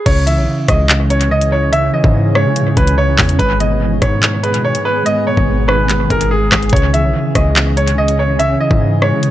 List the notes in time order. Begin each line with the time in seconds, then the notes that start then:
0.06 C#2 C#3 E3 C#4 G#4 C#5, kick, closed hi-hat, crash
0.27 E3 E5, closed hi-hat
0.37 B1
0.48 C#3
0.68 C#2 G#3 D#5, kick, cross-stick, closed hi-hat
0.89 C#3, clap, closed hi-hat
1.10 C#4 C#5, closed hi-hat
1.21 closed hi-hat
1.31 C#3 D#5
1.41 closed hi-hat
1.52 C#5
1.73 C#3 E5, closed hi-hat
1.93 E3 D#5
2.04 G#2, kick
2.14 C#3
2.35 G#3 C#5, cross-stick
2.46 C#3
2.56 C#3, closed hi-hat
2.61 G#2
2.77 C#2 C#4 B4, kick, closed hi-hat
2.87 closed hi-hat
2.98 C#3 C#5
3.19 E2, kick, clap, open hi-hat
3.29 closed hi-hat
3.39 G#1 G#2 D#3 B3 B4, kick, closed hi-hat
3.60 B2 D#5, closed hi-hat
3.81 G#2
4.02 G#2 D#3 C#5, kick, cross-stick, closed hi-hat
4.22 G#2, clap, closed hi-hat
4.43 G#3 B4, closed hi-hat
4.54 B2, closed hi-hat
4.64 G#2 C#5
4.75 closed hi-hat
4.85 B4
5.06 G#2 D#5, closed hi-hat
5.27 B2 C#5
5.37 G#1, kick
5.48 G#2
5.68 D#3 B4, cross-stick
5.89 G#2, clap, closed hi-hat
6.10 G#1 G#3 A#4, kick, closed hi-hat
6.21 closed hi-hat
6.31 G#2 G#4
6.52 G#1, kick, cross-stick, clap, closed hi-hat
6.63 closed hi-hat
6.69 C#2 C#3 E3 C#4 C#5, kick, closed hi-hat
6.76 closed hi-hat
6.94 E3 E5, closed hi-hat
7.04 B1
7.14 C#3
7.35 C#2 G#3 D#5, kick, cross-stick, closed hi-hat
7.56 C#3, clap, closed hi-hat
7.77 C#4 C#5, closed hi-hat
7.88 closed hi-hat
7.98 C#3 D#5
8.08 closed hi-hat
8.19 C#5
8.39 C#3 E5, closed hi-hat
8.60 E3 D#5
8.71 G#2, kick
8.81 C#3
9.02 G#3 C#5, cross-stick
9.12 C#3
9.23 C#3, closed hi-hat